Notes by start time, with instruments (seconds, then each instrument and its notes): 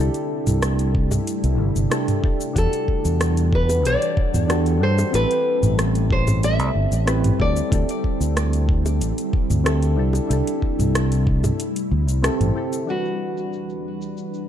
Already playing: ambient pad C3 G3 A3 E4, synth keys D4 E4
0.00 synth keys G4 A4
0.14 closed hi-hat, cabasa
0.47 fingered electric bass C2, closed hi-hat, mid tom, cabasa
0.62 cross-stick, closed hi-hat, cabasa
0.79 closed hi-hat, cabasa
0.95 kick
1.11 closed hi-hat, mid tom, high bongo, cabasa
1.27 closed hi-hat, cabasa
1.44 fingered electric bass C2, closed hi-hat, cabasa
1.60 fingered electric bass G1
1.76 fingered electric bass G1, closed hi-hat, cabasa
1.90 synth keys D4 E4 G4 A4, cross-stick, closed hi-hat, high bongo, cabasa
2.08 closed hi-hat, mid tom, cabasa
2.22 synth keys D4 E4 G4 A4, kick
2.41 closed hi-hat, cabasa
2.53 fingered electric bass E2, ambient pad E3 G3 D4 A4 F#5, synth keys D4 F#4 G4, kick, closed hi-hat, cabasa
2.58 nylon-string guitar A4, synth keys A4
2.73 closed hi-hat, cabasa
2.88 kick
3.05 fingered electric bass E2, closed hi-hat, cabasa
3.21 cross-stick, closed hi-hat, cabasa
3.37 closed hi-hat, cabasa
3.53 nylon-string guitar B4, kick
3.69 closed hi-hat, high bongo, cabasa
3.85 fingered electric bass B1, nylon-string guitar D5, closed hi-hat, cabasa
4.02 closed hi-hat, cabasa
4.17 kick
4.34 fingered electric bass E2, closed hi-hat, mid tom, cabasa
4.48 synth keys D4 F#4 G4 A4, cross-stick, closed hi-hat, cabasa
4.66 closed hi-hat, cabasa
4.80 fingered electric bass G2, synth keys D4 F#4 G4 A4, nylon-string guitar C5
4.98 closed hi-hat, high bongo, cabasa
5.11 fingered electric bass A1, ambient pad A3 C4, synth keys C4 E4 G4, closed hi-hat, cabasa
5.15 synth keys A4, nylon-string guitar B4
5.31 closed hi-hat, cabasa
5.63 fingered electric bass A1, closed hi-hat, mid tom, cabasa
5.79 cross-stick, closed hi-hat, cabasa
5.95 closed hi-hat, cabasa
6.11 nylon-string guitar C5, kick
6.27 closed hi-hat, mid tom, high bongo, cabasa
6.43 nylon-string guitar E5, closed hi-hat, cabasa
6.59 fingered electric bass C2, closed hi-hat, cabasa
6.75 fingered electric bass G1
6.92 fingered electric bass A1, closed hi-hat, cabasa
7.06 synth keys C4 E4 G4 B4, cross-stick, closed hi-hat, high bongo, cabasa
7.24 closed hi-hat, mid tom, cabasa
7.38 fingered electric bass D2, ambient pad D3 E4, synth keys C4 E4 G4 A4, nylon-string guitar D5, kick
7.57 closed hi-hat, cabasa
7.69 fingered electric bass D2, synth keys C4 E4 G4, kick, closed hi-hat, cabasa
7.75 synth keys A4
7.89 closed hi-hat, cabasa
8.04 kick
8.20 fingered electric bass D2, closed hi-hat, cabasa
8.37 cross-stick, closed hi-hat, cabasa
8.53 closed hi-hat, cabasa
8.69 kick
8.86 closed hi-hat, high bongo, cabasa
9.01 fingered electric bass A1, closed hi-hat, cabasa
9.18 closed hi-hat, cabasa
9.33 kick
9.50 fingered electric bass D2, closed hi-hat, mid tom, cabasa
9.64 synth keys C4 E4 G4 A4, cross-stick, closed hi-hat, cabasa
9.82 closed hi-hat, cabasa
9.96 fingered electric bass C2, ambient pad C3 G3 A3, synth keys D4 E4 G4 A4
10.13 closed hi-hat, high bongo, cabasa
10.27 fingered electric bass C2, synth keys D4 E4 G4, closed hi-hat, cabasa
10.33 synth keys A4
10.47 closed hi-hat, cabasa
10.62 kick
10.79 fingered electric bass C2, closed hi-hat, mid tom, cabasa
10.95 cross-stick, closed hi-hat, cabasa
11.12 closed hi-hat, cabasa
11.27 kick
11.44 closed hi-hat, mid tom, high bongo, cabasa
11.59 ambient pad D3 C4 G4, closed hi-hat, cabasa
11.76 closed hi-hat, cabasa
11.91 fingered electric bass D2
12.08 fingered electric bass C2, closed hi-hat, cabasa
12.22 synth keys C4 E4 G4 A4, cross-stick, closed hi-hat, high bongo, cabasa
12.40 fingered electric bass A1, closed hi-hat, mid tom, cabasa
12.55 synth keys C4 E4 G4 A4
12.73 closed hi-hat, cabasa
12.86 ambient pad E2 E3 G3 D4, synth keys E3 D4 F#4, cabasa
12.90 synth keys G3 B4, nylon-string guitar F#4
13.05 cabasa
13.37 cabasa
13.53 cabasa
13.69 cabasa
14.02 cabasa
14.17 cabasa
14.34 cabasa